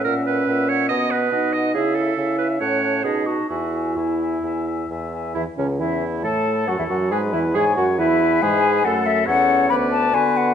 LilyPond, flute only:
\new Staff \with { instrumentName = "Flute" } { \time 4/4 \key e \major \tempo 4 = 137 fis''8 fis''8 fis''8 fis''8 fis''8 fis''8 fis''8 fis''8 | e''8 e''8 e''8 e''8 a''8 a''8 a''8 a''8 | gis''8 gis''8 gis''8 gis''8 gis''8 gis''8 gis''8 gis''8 | \key a \major e''8 cis''8 e''4 a''4 fis''16 e''16 fis''8 |
gis''8 e''8 gis''8 fis''8 e''4 gis''4 | fis''8 e''8 fis''4 b''8 a''8 gis''8 fis''8 | }